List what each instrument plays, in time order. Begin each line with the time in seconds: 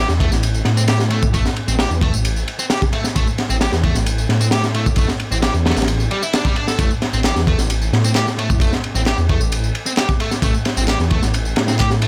0.09 detuned saw bass E2, snare, tambourine
0.20 distorted electric guitar A3, kick, ride
0.32 detuned saw bass A1, snare, tambourine
0.43 ride, tambourine
0.54 tambourine
0.65 detuned saw bass A2, snare, ride
0.77 distorted electric guitar C4, tambourine
0.88 distorted electric guitar G4, snare, ride, tambourine
1.00 snare, tambourine
1.10 distorted electric guitar A3, ride
1.23 kick, tambourine
1.34 detuned saw bass A1, distorted electric guitar A3, kick, ride, tambourine
1.45 snare, tambourine
1.56 ride
1.68 detuned saw bass A1, distorted electric guitar C4, tambourine
1.79 distorted electric guitar G4, snare, ride, tambourine
1.90 detuned saw bass E2, tambourine
2.01 distorted electric guitar A3, kick, ride
2.13 detuned saw bass A1, tambourine
2.25 ride, tambourine
2.36 tambourine
2.48 ride
2.59 distorted electric guitar C4, tambourine
2.70 distorted electric guitar G4, snare, ride, tambourine
2.82 kick, tambourine
2.93 distorted electric guitar A3, ride
3.04 snare, tambourine
3.16 detuned saw bass A1, distorted electric guitar A3, kick, ride, tambourine
3.27 tambourine
3.38 snare, ride
3.50 detuned saw bass A1, distorted electric guitar C4, tambourine
3.61 distorted electric guitar G4, snare, ride, tambourine
3.73 detuned saw bass E2, snare, tambourine
3.84 distorted electric guitar A3, kick, ride
3.95 detuned saw bass A1, snare, tambourine
4.06 ride, tambourine
4.18 tambourine
4.29 detuned saw bass A2, snare, ride
4.41 distorted electric guitar C4, tambourine
4.51 distorted electric guitar G4, snare, ride, tambourine
4.64 snare, tambourine
4.74 distorted electric guitar A3, ride
4.86 kick, tambourine
4.96 detuned saw bass A1, distorted electric guitar A3, kick, ride, tambourine
5.08 snare, tambourine
5.20 ride
5.31 detuned saw bass A1, distorted electric guitar C4, tambourine
5.42 distorted electric guitar G4, snare, ride, tambourine
5.54 detuned saw bass E2, tambourine
5.65 distorted electric guitar A3, snare, ride
5.71 snare, ride
5.76 detuned saw bass A1, snare, ride, tambourine
5.82 snare, ride
5.88 ride, tambourine
6.00 tambourine
6.11 distorted electric guitar G3, ride
6.22 distorted electric guitar E4, tambourine
6.33 distorted electric guitar D4, snare, ride, tambourine
6.45 distorted electric guitar G3, kick, tambourine
6.56 distorted electric guitar D4, ride
6.68 distorted electric guitar A4, snare, tambourine
6.79 detuned saw bass A1, distorted electric guitar A3, kick, ride, tambourine
6.91 tambourine
7.02 snare, ride
7.13 detuned saw bass A1, distorted electric guitar C4, tambourine
7.24 distorted electric guitar G4, snare, clap, ride, tambourine
7.36 detuned saw bass E2, snare, tambourine
7.47 distorted electric guitar A3, kick, ride
7.59 detuned saw bass A1, snare, tambourine
7.70 ride, tambourine
7.82 tambourine
7.93 detuned saw bass A2, snare, ride
8.04 distorted electric guitar C4, tambourine
8.15 distorted electric guitar G4, snare, clap, ride, tambourine
8.27 snare, tambourine
8.38 distorted electric guitar A3, ride
8.50 kick, tambourine
8.60 detuned saw bass A1, distorted electric guitar A3, kick, ride, tambourine
8.72 snare, tambourine
8.84 ride
8.95 detuned saw bass A1, distorted electric guitar C4, tambourine
9.06 distorted electric guitar G4, snare, clap, ride, tambourine
9.18 detuned saw bass E2, tambourine
9.29 distorted electric guitar A3, kick, ride
9.41 detuned saw bass A1, tambourine
9.52 ride, tambourine
9.63 tambourine
9.75 ride
9.86 distorted electric guitar C4, tambourine
9.97 distorted electric guitar G4, snare, clap, ride, tambourine
10.09 kick, tambourine
10.20 distorted electric guitar A3, ride
10.31 snare, tambourine
10.42 detuned saw bass A1, distorted electric guitar A3, kick, ride, tambourine
10.54 tambourine
10.65 snare, ride
10.77 detuned saw bass A1, distorted electric guitar C4, tambourine
10.88 distorted electric guitar G4, snare, clap, ride, tambourine
11.00 detuned saw bass E2, snare, tambourine
11.11 distorted electric guitar A3, kick, ride
11.22 detuned saw bass A1, snare, tambourine
11.34 ride, tambourine
11.45 tambourine
11.56 detuned saw bass A2, snare, ride
11.68 distorted electric guitar C4, snare, tambourine
11.79 distorted electric guitar G4, kick, clap, ride, tambourine
11.91 snare, tambourine
12.02 distorted electric guitar A3, ride